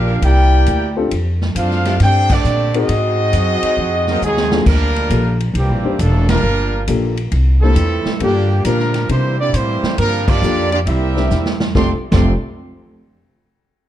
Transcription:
Already playing: A#1 A#3 D4 F4 G4 A#4 F5
0.06 E3 C4 D4 A#4
0.22 C2 A#3 E4 G4 A#4 D5 G5, ride
0.66 D2, hi-hat pedal, ride
0.97 C4 D4 F4 G4 A4
1.11 F2, ride
1.41 snare
1.55 F#2 C4 D4 F4 A4 C5 F5, hi-hat pedal, ride
1.71 snare
1.85 F3 A3 D4 G4, snare, ride
2.00 G2 C4 D4 G4 A4 C5 G5, snare, ride
2.30 D3 A3 C4 D4 G4 A4 D5, kick, crash
2.44 A#2, hi-hat pedal
2.74 C4 D#4 F#4 G#4 A#4, ride
2.78 F#4 G#4 D#5
2.89 G#2, ride
3.33 F#2, hi-hat pedal, ride
3.63 F#3 C4 D#4 G#4, muted upright bass stroke, ride
3.77 F2
4.07 F#3 A#3 C4 D#4 A#4, snare
4.21 D#2 C3 D#3 F#3 G#3 C4 D#4 G#4, hi-hat pedal
4.37 snare
4.52 A#3 D4 F4 G4 A4, snare
4.66 D2 D3 F3 G3 A#3 D4 F4 A#4, kick, crash
4.96 ride
5.10 A#1 A#3 D4 F4 G4 A4, hi-hat pedal, ride
5.40 ride
5.54 C2 A#2 E3 G3 G4, ride
5.58 A#3 C4
5.69 A#1
5.84 G1 C4 D4 E4 G4 C5
5.99 E1 A3 A#3 D4 A4, hi-hat pedal, ride
6.29 D3 F3 G3 A#3 D4 F4 A#4, snare, ride
6.43 G1
6.88 A#1 A#3 D4 F4 G4 A4, hi-hat pedal, ride
7.17 ride
7.32 C2, ride
7.62 A#2 E3 G3 A3 A#3 C4 D4 E4 G4 A4 C5
7.75 E2, hi-hat pedal, ride
8.05 muted upright bass stroke, snare
8.20 G2 A#2 D3 G3 A#3 D4 F4 G4 A4, ride
8.65 A#2 D3 F3 G3 A#3 D4 F4 G4 A#4 C5, hi-hat pedal, ride
8.79 snare
8.94 snare, ride
9.09 C3 E3 G3 A#3 C4 D4 E4 G4 A#4 C5, ride
9.40 A#3 D4 E4 G4 D5
9.53 A2 E3 G3 A#3 C4 E4 G4 C5, hi-hat pedal, ride
9.83 muted upright bass stroke, snare
9.98 G2 D3 F3 G3 A#3 D4 F4 A#4, ride
10.28 F3 A#3 D4 F4 G4 D5, kick, crash
10.42 F2 A#3 D4 F4 G4 A4, hi-hat pedal
10.72 F3 A#3 D4 F4 G4 D5, ride
10.86 C2 G3 A#3 C4 E4 G4 A#4 E5, ride
11.16 C4 D4 E4 G4 A#4, snare
11.30 E2, snare, hi-hat pedal
11.46 snare
11.60 snare
11.75 F1 F2 C3 D3 A3 C4 D4 F4 G4 A4 D5 G5 C6, kick, snare
12.12 F1 F2 C3 D3 A3 C4 D4 F4 G4 A4 D5 G5 C6, kick, snare, crash

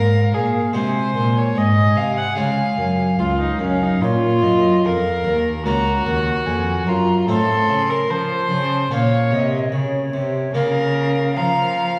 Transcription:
Already playing: G#2 C#4 F4 A#4 F5
0.32 A#2 G#4
0.73 C3 G#3 D#4 F#4 C5 G#5
1.15 A#2
1.37 C#5
1.55 G#2 D#5 G#5
1.96 C3 F5
2.18 F#5
2.36 C#3 G#3 C#4 F4 F5
2.78 F#2
3.19 C#2 F4 F5
3.40 D#4
3.59 F#2 C#4
3.83 D#4
4.01 A#2 F4 C#5
4.42 F#2 D#5
4.84 F2 A#4 F5
5.24 D#2
5.66 C#2 A#3 C#4 F4 F#4 A#5
6.06 D#2 F#5
6.46 F2 G#5
6.87 F#2 F4 A#5
7.28 A2 C4 D#4 F4 A4 C6
7.69 C#3
7.89 A#4
8.10 F3 C5 A5
8.50 C#3
8.91 A#2 A#3 C#4 F4 C#5 F5
9.31 C3 D#5
9.72 C#3 C#5
10.13 C3
10.54 C#3 A#3 C#4 F4 A#4 F5
11.36 F3 F5 A#5

